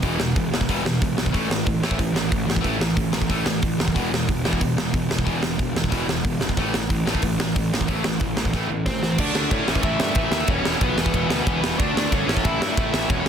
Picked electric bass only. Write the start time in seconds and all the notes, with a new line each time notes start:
0.02 E1
0.18 E1
0.36 E1
0.52 E1
0.69 E1
0.84 E1
1.02 E1
1.16 B1
1.34 A1
1.49 A1
1.67 A1
1.82 A1
1.99 A1
2.13 A1
2.32 A1
2.47 A1
2.64 A1
2.79 A1
2.96 A1
3.13 A1
3.29 A1
3.46 A1
3.62 A1
3.79 F#1
3.96 E1
4.12 E1
4.28 E1
4.46 E1
4.61 E1
4.78 E1
4.93 E1
5.11 E1
5.26 E1
5.42 E1
5.59 E1
5.75 E1
5.92 E1
6.07 E1
6.24 E1
6.41 E1
6.57 A1
6.73 A1
6.90 A1
7.07 A1
7.23 A1
7.40 A1
7.56 A1
7.74 A1
7.88 A1
8.06 A1
8.21 A1
8.37 A1
8.53 A1
8.70 A1
8.86 A1
9.02 A1
9.18 D2
9.33 D2
9.51 A2
9.68 A1
9.83 A1
10.00 G2
10.15 A1
10.31 D#2
10.48 E1
10.63 E1
10.81 B1
10.96 E1
11.13 E1
11.29 D2
11.47 E1
11.61 E1
11.79 D2
11.95 D2
12.12 G1
12.27 A1
12.45 A1
12.60 G2
12.77 A1
12.93 A1
13.09 E1
13.25 E1